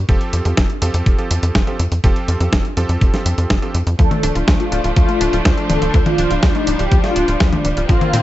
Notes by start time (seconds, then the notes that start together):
0.09 F1 F3 C4 F4 G4 A4, kick, closed hi-hat
0.21 closed hi-hat
0.33 F2, closed hi-hat
0.45 F2 F3 C4 F4 G4 A4, closed hi-hat
0.57 F1, kick, snare, closed hi-hat
0.70 closed hi-hat
0.82 F2 F3 C4 F4 G4 A4, closed hi-hat
0.94 F2, closed hi-hat
1.06 F1, kick, closed hi-hat
1.18 F3 C4 F4 G4 A4, closed hi-hat
1.31 F2, closed hi-hat
1.43 F2, closed hi-hat
1.55 F1, kick, snare, closed hi-hat
1.67 F3 C4 F4 G4 A4, closed hi-hat
1.79 F2, closed hi-hat
1.92 F2, closed hi-hat
2.04 F1 F3 C4 F4 G4 A4, kick, closed hi-hat
2.16 closed hi-hat
2.28 F2, closed hi-hat
2.40 F2 F3 C4 F4 G4 A4, closed hi-hat
2.53 F1, kick, snare, closed hi-hat
2.65 closed hi-hat
2.77 F2 F3 C4 F4 G4 A4, closed hi-hat
2.89 F2, closed hi-hat
3.01 F1, kick, closed hi-hat
3.14 F3 C4 F4 G4 A4, snare, closed hi-hat
3.26 F2, closed hi-hat
3.38 F2, closed hi-hat
3.50 F1, kick, snare, closed hi-hat
3.62 F3 C4 F4 G4 A4, closed hi-hat
3.74 F2, closed hi-hat
3.87 F2, closed hi-hat
3.99 D2 F3 A3 D4 A4, kick, closed hi-hat
4.11 A3, closed hi-hat, high tom
4.23 D1 D4, closed hi-hat
4.35 D1 F4, closed hi-hat
4.48 D2 F3, kick, snare, closed hi-hat
4.60 A3 F4, closed hi-hat
4.72 D1 D4, closed hi-hat
4.84 D1 F4, closed hi-hat
4.96 D2 F3 F4, kick, closed hi-hat
5.09 A3, closed hi-hat
5.21 D1 D4, closed hi-hat
5.33 D1 F4, closed hi-hat
5.45 D2 F3, kick, snare, closed hi-hat
5.58 A3, closed hi-hat
5.70 D1 D4 A4, closed hi-hat, high tom
5.82 D1 F4, closed hi-hat
5.94 D2 F3 G3, kick, closed hi-hat
6.06 A3 F4, closed hi-hat, high tom
6.18 D1 D4, closed hi-hat
6.31 D1 F4, closed hi-hat
6.43 D2 F3, kick, snare, closed hi-hat
6.55 A3 D#4, closed hi-hat
6.67 D1 D4, closed hi-hat
6.79 D1 F4 G4, closed hi-hat
6.91 D2 F3, kick, closed hi-hat
7.04 A3 F4, snare, closed hi-hat
7.16 D1 D4, closed hi-hat
7.28 D1 F4, closed hi-hat
7.40 D2 F3, kick, snare, closed hi-hat
7.53 A3, closed hi-hat, high tom
7.65 D1 D4, closed hi-hat
7.77 D1 F4, closed hi-hat
7.89 A#1 D3 F3 A#3 C4 F4, kick, closed hi-hat
8.01 A#3, closed hi-hat, high tom
8.13 A#2 C4, closed hi-hat